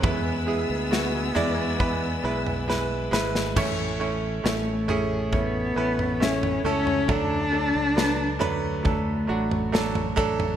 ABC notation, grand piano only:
X:1
M:4/4
L:1/8
Q:1/4=68
K:A
V:1 name="Grand piano"
[G,EB] [G,EG] [G,EF] [G,Ed] [G,EB] [G,EB] [G,EB] [G,EB] | [A,CEc] [A,CEc] [A,CEc] [A,CEG] [A,CEc] [A,CEB] [A,CEe] [A,CEA] | [F,A,DA] [F,A,DA] [F,A,DB] [F,A,DB] [F,A,DA] [F,A,DF] [F,A,DA] [F,A,DA] |]
V:2 name="Grand piano" clef=bass
B,,3 z4 z | [A,,E,]3 z4 z | A,,3 z4 z |]